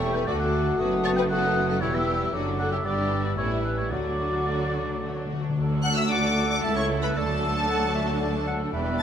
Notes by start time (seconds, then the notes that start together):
Already playing: E1 E2 A3 G4 A4 C#5 G5 C#6
0.01 G3 A3 E4
0.14 E3 G3 C#4 B4 G5
0.27 D2 D3 A3 F#4 A4 D5 D6
0.39 F#3 D4 A4 F#5
0.52 D3 A3 F#4
0.66 F#3 D4
0.78 F#1 F#2 F#3 A3 B3 F#4 B4 D#6
0.92 A3 D#4
1.04 F#3 B3 F#4 C#5 A5
1.16 A3 D#4 B4 G5
1.29 F#3 A3 B3 F#4 A4 B4 F#5 D#6
1.43 A3 D#4
1.55 F#3 B3 F#4
1.68 A3 D#4 A4 F#5
1.80 E1 E2 E3 G3 B3 E4 G4 B4 C#5 E6
1.93 G3 E4 G4 E5
2.07 E3 B3 G4
2.20 G3 E4
2.32 F#1 F#2 D3 F#3 A3 D4 F#4 A4 D6
2.46 F#3 D4
2.58 D3 A3 F#4 A4 F#5
2.71 F#3 D4 G4 E5
2.84 G1 G2 D3 G3 B3 D4 G4 B4 D5 E6
2.97 E3 D4 E4
3.09 D3 B3 D4
3.23 E3 D4 E4 F#4 D5
3.36 A1 A2 G3 A3 B3 C#4 E4 B4 C#5 E6
3.49 G3 A3 E4
3.62 A3 B3 C#4 D4 B4
3.76 G3 A3 E4 C#5
3.90 D2 D3 F#3 A3 F#4 A4 D5 D6
4.00 D3
4.05 D3 F#3 D4
4.16 D3 A3 F#4
4.33 F#3 D4
4.39 D3
4.47 D3 A3 F#4
4.61 F#3 D4
4.71 D3 A3 F#4
4.79 D3
4.86 D3 F#3 D4
4.95 D3
5.02 D3 A3 F#4
5.10 D3
5.15 D3 F#3 D4
5.26 D3 A3 F#4
5.33 D3
5.41 D3 F#3 D4
5.49 D3
5.55 D2 F#3 A3 D4 F#4 A4
5.83 F#5 F#6
5.96 E5 E6
6.10 D5 F#5 D6
6.49 D5 D6
6.62 C#2 A3 E4 A4 E5 A5
6.75 C#5 C#6
7.02 B4 B5
7.15 D2 F#3 D4 F#4 A4 D5 A5
7.68 F#5
7.95 E5
8.20 D5
8.47 F#5
8.73 E1 E2 G3 B3 G4 B4 D5 E5
8.99 A6